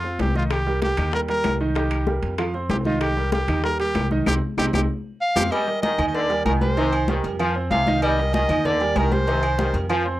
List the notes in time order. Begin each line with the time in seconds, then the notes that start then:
Already playing: F2 F4
0.04 C4 C5, high bongo, high conga
0.19 C2 G4, high bongo, low bongo, high conga, high timbale, low timbale
0.35 D#3 D#4 F4 D#5, high bongo, high conga
0.50 G4, high bongo, high timbale, claves
0.67 G3 G4 A#4, high bongo, high conga
0.82 G4, high bongo, high conga, high timbale, low timbale
0.97 D#2 D#3 D#4 D#5, high conga, low conga, high timbale, claves
1.13 G3 G4 A#4, high bongo, high conga
1.28 G3 G4 A#4, high bongo, high conga, high timbale
1.44 C2, high bongo, low bongo, high conga, high timbale, low timbale, claves
1.60 D#3 D#4 D#5, high bongo
1.75 D#3 D#4 G4 D#5, high bongo, high conga, high timbale
1.91 high bongo, high conga, high timbale, claves
2.07 G3 G4 A#4, high bongo, high conga, low timbale
2.22 F2, high conga, high timbale
2.38 F3 F4 F5, high bongo, high conga, high timbale, claves
2.54 C4 C5, high bongo, high conga
2.69 C2 G4, high bongo, low bongo, high conga, high timbale, low timbale
2.85 D#3 D#4 F4 D#5, high bongo, high conga
3.01 G4, high bongo, high timbale, claves
3.17 G3 G4 A#4, high bongo, high conga
3.32 G4, high bongo, high conga, high timbale, low timbale
3.48 D#2 D#3 D#4 D#5, high conga, low conga, high timbale, claves
3.64 G3 G4 A#4, high bongo, high conga
3.79 G3 G4 A#4, high bongo, high conga, high timbale
3.95 C2, high bongo, low bongo, high conga, high timbale, low timbale, claves
4.11 D#3 D#4 D#5, high bongo, high conga
4.26 C2 C4 D#4 G4, low bongo, high conga, high timbale, claves
4.57 C2 C4 D#4 G4, low bongo, high conga, high timbale, claves
4.73 C2 C4 D#4 G4, low bongo, high conga, high timbale, claves
5.21 F5
5.36 F2 C4 F4 G4, low bongo, high conga, high timbale, claves
5.51 G3 D#5, cowbell, low agogo, claves
5.67 G3 G4 A#4, high conga
5.82 D#3 D#5, cowbell, high conga, low timbale, low agogo
5.98 D#2 D#3 D#4 D#5, cowbell, high conga, low conga, low agogo, claves
6.08 D#5
6.14 D3 D5, cowbell, high conga
6.30 G3 G4 A#4, high conga, low agogo
6.45 C2 D#3 A#4, cowbell, high conga, low timbale, low agogo, claves
6.61 G3 G4 A#4 C5, cowbell, high conga
6.77 C3 D#3 D#4 D#5, cowbell, high conga, low agogo
6.92 high conga, low agogo, claves
7.08 D#3 G3 G4 A#4, cowbell, high conga, low timbale
7.24 F2, cowbell, high conga, low agogo
7.39 F3 F4 F5, cowbell, high conga, low agogo, claves
7.55 C4 C5, high conga
7.71 C2 C3 F5, cowbell, high conga, low timbale, low agogo
7.87 D#3 D#4 D#5, cowbell, high conga
8.02 G3 D#5, cowbell, low agogo, claves
8.18 G3 G4 A#4, high conga
8.33 D#3 D#5, cowbell, high conga, low timbale, low agogo
8.49 D#2 D#3 D#4 D#5, cowbell, high conga, low conga, low agogo, claves
8.65 D3 D5, cowbell, high conga, low conga
8.80 G3 G4 A#4, high conga, low agogo
8.95 C2 D#3 A#4, cowbell, high conga, low timbale, low agogo, claves
9.12 G3 G4 A#4 C5, cowbell, high conga
9.27 C3 D#3 D#4 D#5, cowbell, high conga, low agogo
9.43 high conga, low agogo, claves
9.58 D#3 G3 G4 A#4, cowbell, high conga, low timbale
9.73 F2, cowbell, high conga, low agogo
9.89 F3 F4 F5, cowbell, high conga, low agogo, claves
10.05 C4 C5, high conga